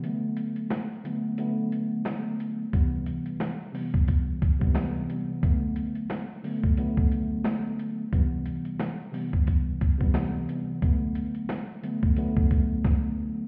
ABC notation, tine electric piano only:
X:1
M:4/4
L:1/16
Q:"Swing 16ths" 1/4=89
K:Bphr
V:1 name="Tine electric piano" clef=bass
[D,F,A,B,]4- [D,F,A,B,] z [D,F,A,B,]2 [D,F,A,B,]6- [D,F,A,B,] z | [C,E,G,B,]4- [C,E,G,B,] z [C,E,G,B,]4- [C,E,G,B,] [C,E,G,B,] [C,E,G,B,]2 [C,E,G,B,]2 | [D,F,A,B,]4- [D,F,A,B,] z [D,F,A,B,]2 [D,F,A,B,]6- [D,F,A,B,] z | [C,E,G,B,]4- [C,E,G,B,] z [C,E,G,B,]4- [C,E,G,B,] [C,E,G,B,] [C,E,G,B,]2 [C,E,G,B,]2 |
[D,F,A,B,]4- [D,F,A,B,] z [D,F,A,B,]2 [D,F,A,B,]6- [D,F,A,B,] z |]